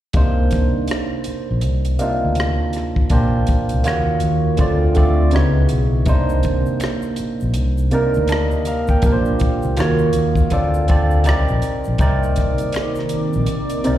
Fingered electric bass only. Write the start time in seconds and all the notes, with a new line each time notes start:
0.16 C2
0.77 muted fingered electric bass stroke
1.27 muted fingered electric bass stroke
1.51 A#1
1.65 C2
2.24 D2
3.12 A#1
3.73 C2
3.87 D#2
4.24 D#2
4.60 D2
5.35 C#2
5.72 B1
6.08 C2
6.69 muted fingered electric bass stroke
7.20 muted fingered electric bass stroke
7.42 A#1
7.57 C2
8.17 D2
9.04 A#1
9.65 C2
9.79 D#2
10.16 D#2
10.53 D2
11.27 C2
11.50 A#1
11.88 A#1
12.00 C2
12.62 muted fingered electric bass stroke
13.13 muted fingered electric bass stroke
13.36 A#1
13.73 muted fingered electric bass stroke
13.87 C2